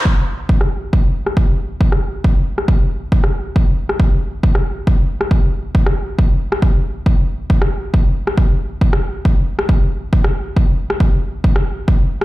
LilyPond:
\new DrumStaff \with { instrumentName = "Drums" } \drummode { \time 4/4 \tempo 4 = 137 bd4 bd16 ss8. bd8. ss16 bd4 | bd16 ss8. bd8. ss16 bd4 bd16 ss8. | bd8. ss16 bd4 bd16 ss8. bd8. ss16 | bd4 bd16 ss8. bd8. ss16 bd4 |
bd4 bd16 ss8. bd8. ss16 bd4 | bd16 ss8. bd8. ss16 bd4 bd16 ss8. | bd8. ss16 bd4 bd16 ss8. bd8. ss16 | }